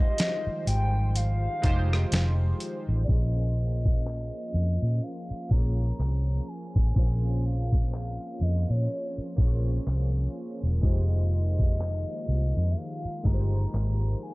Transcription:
0.00 3.05 D#3 medium
0.00 3.05 F3 medium
0.00 0.46 G#3 medium
0.00 0.47 D#4 medium
0.00 0.47 F4 medium
0.00 3.05 F4 medium
0.00 0.48 G4 medium
0.00 0.48 C5 medium
0.00 3.05 C5 medium
0.00 0.67 D#5 loud
0.18 snare loud
0.18 closed hi-hat medium
0.47 muted fingered electric bass stroke soft
0.67 1.46 G#1 medium
0.67 1.17 G5 loud
0.67 closed hi-hat medium
1.16 2.61 F5 loud
1.16 closed hi-hat medium
1.62 2.04 F1 loud
1.62 2.55 G#3 medium
1.62 2.55 D#4 medium
1.62 2.56 F4 medium
1.62 2.56 G4 medium
1.62 kick medium
1.62 closed hi-hat medium
1.66 2.57 C5 medium
1.93 cross-stick medium
2.12 2.52 F1 medium
2.12 snare loud
2.12 closed hi-hat medium
2.60 closed hi-hat medium
2.89 3.05 A1 medium
3.04 4.33 A#3 medium
3.04 3.11 D5 medium
3.08 4.30 A#1 loud
3.08 14.34 F3 medium
3.08 6.92 A#3 medium
3.08 4.34 C#4 medium
3.08 10.79 C#4 medium
3.08 14.34 F4 medium
3.08 4.34 F4 medium
3.08 4.35 G#4 medium
3.08 4.35 C5 medium
3.08 5.04 D#5 loud
3.08 kick loud
3.08 closed hi-hat medium
3.58 closed hi-hat medium
3.85 kick loud
4.05 clap loud
4.05 closed hi-hat medium
4.54 4.77 F2 medium
4.54 closed hi-hat medium
4.82 4.99 A#2 medium
5.03 5.53 F5 loud
5.03 closed hi-hat medium
5.31 muted fingered electric bass stroke soft
5.49 5.91 A#1 loud
5.49 6.42 A#3 medium
5.49 6.43 C#4 medium
5.49 6.43 F4 medium
5.49 6.44 G#4 medium
5.49 6.50 A#5 loud
5.49 kick medium
5.49 closed hi-hat medium
5.53 6.44 C#5 medium
5.99 6.39 C2 medium
5.99 clap loud
5.99 closed hi-hat medium
6.48 7.45 G#5 loud
6.48 closed hi-hat soft
6.64 closed hi-hat soft
6.76 6.92 A1 medium
6.76 kick medium
6.80 closed hi-hat medium
6.94 8.17 A#1 loud
6.94 8.20 A#3 medium
6.94 14.34 A#3 medium
6.94 7.03 C4 medium
6.94 8.21 F4 medium
6.94 8.22 G#4 medium
6.94 kick loud
6.94 closed hi-hat medium
6.98 8.24 C#4 medium
6.98 8.22 C5 medium
7.45 7.90 F5 loud
7.45 closed hi-hat medium
7.72 kick loud
7.93 8.44 F5 loud
7.93 clap loud
7.93 closed hi-hat medium
8.41 8.64 F2 medium
8.41 8.72 D#5 medium
8.41 closed hi-hat medium
8.70 8.86 A#2 medium
8.70 9.67 C#5 medium
8.90 closed hi-hat medium
9.18 muted fingered electric bass stroke soft
9.36 9.78 A#1 medium
9.36 10.29 A#3 medium
9.36 10.30 C#4 medium
9.36 10.30 F4 medium
9.36 10.31 G#4 medium
9.36 kick medium
9.36 closed hi-hat medium
9.40 9.47 C5 medium
9.47 10.35 C#5 medium
9.86 10.26 C2 medium
9.86 clap loud
9.86 closed hi-hat medium
10.35 closed hi-hat soft
10.51 closed hi-hat soft
10.63 10.80 E1 medium
10.63 closed hi-hat medium
10.81 12.04 F1 loud
10.81 14.34 D#3 medium
10.81 12.08 G#3 medium
10.81 12.08 D#4 medium
10.81 12.09 F4 medium
10.81 12.09 G4 medium
10.81 12.73 D#5 loud
10.81 kick loud
10.81 closed hi-hat medium
10.86 12.10 C5 medium
11.32 closed hi-hat medium
11.60 kick loud
11.80 clap loud
11.80 closed hi-hat medium
12.28 12.51 C2 medium
12.28 closed hi-hat medium
12.57 12.73 F2 medium
12.72 12.79 E5 medium
12.77 13.25 F5 loud
12.77 closed hi-hat medium
13.05 muted fingered electric bass stroke soft
13.24 13.65 G1 medium
13.24 14.16 G#3 medium
13.24 14.17 D#4 medium
13.24 14.17 F4 medium
13.24 14.18 G4 medium
13.24 13.34 A#4 medium
13.24 14.18 A#5 loud
13.24 kick medium
13.24 closed hi-hat medium
13.34 14.22 C5 medium
13.73 14.13 G#1 medium
13.73 clap loud
13.73 closed hi-hat medium
14.22 14.34 G#5 medium
14.22 closed hi-hat soft

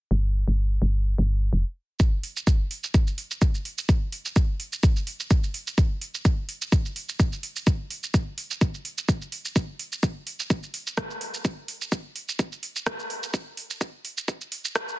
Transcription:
0.11 0.44 G1 medium
0.48 0.79 G1 medium
0.82 1.15 G1 medium
1.18 1.50 G1 medium
1.53 1.64 F1 medium
2.00 kick loud
2.00 shaker soft
2.23 open hi-hat medium
2.37 shaker soft
2.47 kick loud
2.47 shaker medium
2.71 open hi-hat medium
2.84 shaker soft
2.94 kick loud
2.94 shaker medium
3.07 shaker soft
3.18 open hi-hat medium
3.31 shaker soft
3.42 kick loud
3.42 shaker medium
3.55 shaker soft
3.65 open hi-hat medium
3.78 open hi-hat soft
3.78 shaker soft
3.89 kick loud
3.89 shaker soft
4.12 open hi-hat medium
4.25 shaker soft
4.36 kick loud
4.36 shaker soft
4.60 open hi-hat medium
4.73 shaker soft
4.83 kick loud
4.83 shaker medium
4.96 shaker soft
5.07 open hi-hat medium
5.20 shaker soft
5.31 kick loud
5.31 shaker medium
5.44 shaker soft
5.54 open hi-hat loud
5.67 open hi-hat soft
5.67 shaker soft
5.78 kick loud
5.78 shaker soft
6.01 open hi-hat medium
6.14 shaker soft
6.25 kick loud
6.25 shaker medium
6.49 open hi-hat medium
6.62 shaker soft
6.72 kick loud
6.72 shaker soft
6.85 shaker soft
6.96 open hi-hat medium
7.09 shaker soft
7.20 kick loud
7.20 shaker soft
7.33 shaker soft
7.43 open hi-hat medium
7.56 open hi-hat soft
7.56 shaker soft
7.67 kick loud
7.67 shaker soft
7.90 open hi-hat medium
8.03 shaker soft
8.14 kick loud
8.14 shaker soft
8.38 open hi-hat medium
8.51 shaker soft
8.61 kick loud
8.61 shaker soft
8.74 shaker soft
8.85 open hi-hat medium
8.98 shaker soft
9.09 kick loud
9.09 shaker soft
9.22 shaker soft
9.32 open hi-hat loud
9.45 open hi-hat soft
9.45 shaker soft
9.56 kick loud
9.56 shaker soft
9.79 open hi-hat medium
9.92 shaker soft
10.03 kick loud
10.03 shaker soft
10.27 open hi-hat medium
10.40 shaker soft
10.50 kick loud
10.50 shaker soft
10.63 shaker soft
10.74 open hi-hat medium
10.87 shaker soft
10.97 kick loud
10.97 cross-stick medium
10.97 shaker soft
11.10 shaker soft
11.21 open hi-hat medium
11.34 open hi-hat soft
11.34 shaker soft
11.45 kick loud
11.45 shaker soft
11.68 open hi-hat medium
11.81 shaker soft
11.92 kick loud
11.92 shaker medium
12.16 open hi-hat medium
12.29 shaker soft
12.39 kick loud
12.39 shaker medium
12.52 shaker soft
12.63 open hi-hat medium
12.76 shaker soft
12.86 kick loud
12.86 cross-stick loud
12.86 shaker medium
12.99 shaker soft
13.10 open hi-hat medium
13.23 open hi-hat soft
13.23 shaker soft
13.34 kick loud
13.34 shaker medium
13.57 open hi-hat medium
13.70 shaker soft
13.81 kick loud
13.81 shaker medium
14.05 open hi-hat medium
14.18 shaker soft
14.28 kick loud
14.28 shaker medium
14.41 shaker soft
14.52 open hi-hat medium
14.65 shaker soft
14.75 kick loud
14.75 cross-stick loud
14.75 shaker medium
14.89 shaker soft

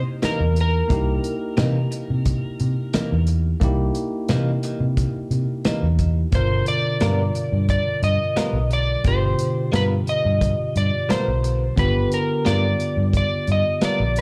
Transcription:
0.00 0.84 A#3 medium
0.00 0.85 D#4 medium
0.00 0.86 E4 medium
0.00 0.86 G4 medium
0.22 0.43 C3 medium
0.22 0.43 E3 medium
0.22 0.43 A#3 medium
0.22 0.43 D#4 medium
0.22 0.58 A#4 medium
0.22 muted fingered electric bass stroke soft
0.22 snare loud
0.22 closed hi-hat medium
0.40 0.82 E2 medium
0.56 closed hi-hat soft
0.61 3.26 A#4 medium
0.88 1.18 C2 loud
0.88 3.56 A#3 medium
0.88 3.57 D#4 medium
0.88 3.57 E4 medium
0.88 3.58 G4 medium
0.88 kick loud
0.88 closed hi-hat medium
1.24 closed hi-hat medium
1.57 1.78 C3 medium
1.57 1.86 C3 medium
1.57 1.78 E3 medium
1.57 1.78 A#3 medium
1.57 1.79 D#4 medium
1.57 snare loud
1.57 closed hi-hat medium
1.92 closed hi-hat medium
2.10 2.38 C3 medium
2.25 kick medium
2.25 closed hi-hat medium
2.59 2.74 C3 medium
2.59 closed hi-hat soft
2.93 3.14 C3 medium
2.93 3.14 E3 medium
2.93 3.14 A#3 medium
2.93 3.15 D#4 medium
2.93 muted fingered electric bass stroke soft
2.93 snare loud
2.93 closed hi-hat medium
3.12 3.54 E2 medium
3.27 closed hi-hat medium
3.60 3.90 C2 loud
3.60 6.28 A#3 medium
3.60 6.29 D#4 medium
3.60 6.29 E4 medium
3.60 kick loud
3.60 closed hi-hat medium
3.64 6.30 G4 medium
3.95 closed hi-hat medium
4.28 4.50 C3 medium
4.28 4.57 C3 medium
4.28 4.50 E3 medium
4.28 4.50 A#3 medium
4.28 4.51 D#4 medium
4.28 snare loud
4.28 closed hi-hat medium
4.63 closed hi-hat medium
4.80 5.08 C3 medium
4.97 kick medium
4.97 closed hi-hat medium
5.31 5.45 C3 medium
5.31 closed hi-hat soft
5.64 5.86 C3 medium
5.64 5.86 E3 medium
5.64 5.86 A#3 medium
5.64 5.87 D#4 medium
5.64 muted fingered electric bass stroke soft
5.64 snare loud
5.64 closed hi-hat medium
5.83 6.24 E2 medium
5.99 kick medium
5.99 closed hi-hat medium
6.32 6.61 G1 loud
6.32 9.00 B2 medium
6.32 9.01 D3 medium
6.32 9.01 F4 medium
6.32 9.02 A#4 medium
6.32 6.68 C5 medium
6.32 kick loud
6.32 closed hi-hat medium
6.66 7.69 D5 loud
6.66 closed hi-hat medium
7.00 7.29 G2 medium
7.00 7.22 G3 medium
7.00 7.22 B3 medium
7.00 7.22 F4 medium
7.00 7.22 A#4 medium
7.00 snare loud
7.00 closed hi-hat medium
7.35 closed hi-hat medium
7.52 7.80 G2 medium
7.69 8.01 D5 medium
7.69 kick medium
7.69 closed hi-hat medium
8.02 8.17 G2 medium
8.02 8.73 D#5 medium
8.02 closed hi-hat soft
8.36 8.57 G3 medium
8.36 8.57 B3 medium
8.36 8.58 F4 medium
8.36 8.58 A#4 medium
8.36 muted fingered electric bass stroke soft
8.36 snare loud
8.36 closed hi-hat medium
8.53 8.95 B1 medium
8.70 9.07 D5 loud
8.70 closed hi-hat medium
9.04 9.33 G1 medium
9.04 11.72 B2 medium
9.04 11.73 D3 medium
9.04 11.74 F4 medium
9.04 11.74 G4 medium
9.04 9.70 C5 medium
9.04 kick loud
9.04 closed hi-hat medium
9.39 closed hi-hat medium
9.72 10.01 G2 medium
9.72 9.93 G3 medium
9.72 9.93 B3 medium
9.72 9.94 F4 medium
9.72 9.94 A#4 medium
9.72 9.84 B4 medium
9.72 snare loud
9.72 closed hi-hat medium
10.07 10.77 D#5 loud
10.07 closed hi-hat medium
10.25 10.53 G2 medium
10.41 kick medium
10.41 closed hi-hat medium
10.76 10.90 G2 medium
10.76 11.11 D5 medium
10.76 closed hi-hat medium
11.09 11.30 G3 medium
11.09 11.30 B3 medium
11.09 11.30 F4 medium
11.09 11.30 A#4 medium
11.09 11.79 C5 medium
11.09 muted fingered electric bass stroke soft
11.09 snare loud
11.09 closed hi-hat medium
11.28 11.69 B1 medium
11.44 closed hi-hat medium
11.76 12.06 G1 loud
11.76 14.21 D3 medium
11.76 14.21 B3 medium
11.76 14.21 F4 medium
11.76 14.21 G4 medium
11.76 12.13 B4 medium
11.76 kick loud
11.76 closed hi-hat medium
12.11 12.47 A#4 medium
12.11 closed hi-hat medium
12.45 12.74 G2 medium
12.45 12.66 G3 medium
12.45 12.66 B3 medium
12.45 12.66 F4 medium
12.45 12.66 A#4 medium
12.45 13.16 D5 medium
12.45 snare loud
12.45 closed hi-hat medium
12.80 closed hi-hat medium
12.97 13.25 G2 medium
13.13 13.50 D5 medium
13.13 kick medium
13.13 closed hi-hat medium
13.47 13.62 G2 medium
13.47 closed hi-hat soft
13.52 13.84 D#5 medium
13.81 14.02 G3 medium
13.81 14.02 B3 medium
13.81 14.03 F4 medium
13.81 14.03 A#4 medium
13.81 14.18 D5 medium
13.81 muted fingered electric bass stroke soft
13.81 snare loud
13.81 closed hi-hat medium
14.00 14.21 A#1 medium
14.16 closed hi-hat medium

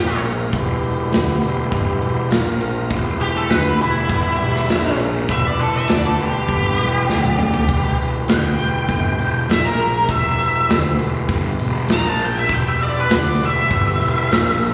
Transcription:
0.00 0.50 A#1 medium
0.00 0.51 F3 medium
0.00 0.51 A#3 medium
0.00 0.52 F4 medium
0.00 0.21 G4 medium
0.00 0.51 A#4 medium
0.24 open hi-hat medium
0.51 1.09 E1 medium
0.51 2.30 G3 medium
0.51 2.30 B3 medium
0.51 2.30 E4 medium
0.51 2.29 G4 medium
0.51 kick medium
0.51 open hi-hat medium
0.83 open hi-hat medium
1.12 1.40 D2 medium
1.12 snare loud
1.12 open hi-hat medium
1.42 1.70 E1 medium
1.42 open hi-hat medium
1.72 2.00 G1 medium
1.72 kick medium
1.72 open hi-hat medium
2.01 2.29 E1 medium
2.01 open hi-hat medium
2.30 2.87 A#1 medium
2.30 2.90 F3 medium
2.30 2.90 A#3 medium
2.30 2.90 F4 medium
2.30 2.90 A#4 medium
2.30 snare medium
2.30 open hi-hat medium
2.61 open hi-hat medium
2.90 3.47 E1 medium
2.90 4.68 G3 medium
2.90 4.67 B3 medium
2.90 4.68 E4 medium
2.90 4.67 G4 medium
2.90 kick loud
2.90 open hi-hat medium
3.20 3.37 G4 medium
3.20 open hi-hat medium
3.37 3.51 A4 medium
3.49 3.78 D2 medium
3.49 3.80 B4 medium
3.49 snare loud
3.49 open hi-hat medium
3.80 4.08 E1 medium
3.80 4.96 E4 medium
3.80 open hi-hat medium
4.09 4.38 G1 medium
4.09 kick loud
4.09 open hi-hat medium
4.39 4.68 E1 medium
4.39 open hi-hat medium
4.56 snare soft
4.69 5.26 A#1 loud
4.69 5.29 F3 medium
4.69 5.28 A#3 medium
4.69 5.28 A#4 medium
4.69 snare medium
4.69 open hi-hat medium
4.99 open hi-hat soft
5.29 5.85 E1 medium
5.29 7.07 B3 medium
5.29 7.08 E4 medium
5.29 7.07 G4 medium
5.29 7.08 B4 medium
5.29 5.47 E5 loud
5.29 kick medium
5.29 open hi-hat medium
5.47 5.60 D5 medium
5.59 5.74 A4 medium
5.59 open hi-hat medium
5.76 5.88 E5 medium
5.88 6.17 D2 medium
5.88 6.03 D5 medium
5.88 snare loud
5.88 open hi-hat medium
6.07 6.20 A4 medium
6.19 6.47 E1 medium
6.19 7.96 G4 loud
6.19 open hi-hat medium
6.49 6.77 G1 medium
6.49 kick medium
6.49 open hi-hat medium
6.79 7.07 E1 medium
6.79 open hi-hat medium
7.08 7.65 D2 medium
7.08 7.68 A3 medium
7.08 7.68 D4 medium
7.08 7.69 A4 medium
7.08 7.68 D5 medium
7.08 snare medium
7.23 high tom medium
7.39 mid tom medium
7.54 floor tom medium
7.69 8.25 E1 medium
7.69 9.48 B3 medium
7.69 9.47 E4 medium
7.69 9.47 G4 medium
7.69 9.47 B4 medium
7.69 kick medium
7.69 open hi-hat medium
7.99 open hi-hat medium
8.28 8.57 D2 medium
8.28 9.46 G5 loud
8.28 snare loud
8.28 open hi-hat medium
8.58 8.86 E1 medium
8.58 open hi-hat medium
8.89 9.17 G1 medium
8.89 kick loud
8.89 open hi-hat medium
9.18 9.46 E1 medium
9.18 open hi-hat medium
9.49 10.05 A#1 loud
9.49 10.10 F3 medium
9.49 10.09 A#3 medium
9.49 10.09 F4 medium
9.49 10.09 A#4 medium
9.49 9.64 E5 medium
9.49 snare medium
9.49 open hi-hat medium
9.65 10.08 A#4 medium
9.65 snare soft
9.79 open hi-hat medium
10.09 10.65 E1 medium
10.09 11.89 G3 medium
10.09 11.89 B3 medium
10.09 11.88 E4 medium
10.09 11.88 G4 medium
10.09 10.68 E5 loud
10.09 kick medium
10.09 open hi-hat medium
10.39 open hi-hat medium
10.69 10.97 D2 medium
10.69 snare loud
10.69 open hi-hat medium
10.99 11.27 E1 medium
10.99 open hi-hat medium
11.29 11.57 G1 loud
11.29 kick loud
11.29 open hi-hat medium
11.59 11.88 E1 medium
11.59 open hi-hat medium
11.89 12.46 A#1 loud
11.89 12.50 F3 medium
11.89 12.50 A#3 medium
11.89 12.51 F4 medium
11.89 12.51 A#4 medium
11.89 snare medium
11.89 open hi-hat medium
11.93 12.06 A#5 loud
12.05 12.21 A5 medium
12.05 snare soft
12.19 open hi-hat medium
12.25 12.37 G5 medium
12.39 12.52 E5 medium
12.49 13.06 E1 medium
12.49 14.30 G3 medium
12.49 14.29 B3 medium
12.49 14.29 E4 medium
12.49 14.30 G4 medium
12.49 kick loud
12.49 open hi-hat medium
12.54 12.67 G5 loud
12.68 12.83 E5 medium
12.80 12.96 D5 medium
12.80 open hi-hat medium
13.00 13.12 B4 medium
13.10 13.39 D2 medium
13.10 snare loud
13.10 open hi-hat medium
13.15 13.42 D5 loud
13.41 13.69 E1 medium
13.41 open hi-hat medium
13.46 14.61 E5 loud
13.70 13.99 G1 medium
13.70 kick loud
13.70 open hi-hat medium
14.00 14.29 E1 medium
14.00 open hi-hat medium
14.31 14.74 A#1 loud
14.31 14.74 F3 medium
14.31 14.74 A#3 medium
14.31 14.74 F4 medium
14.31 14.74 A#4 medium
14.31 snare loud
14.31 open hi-hat medium
14.48 snare soft
14.62 open hi-hat medium

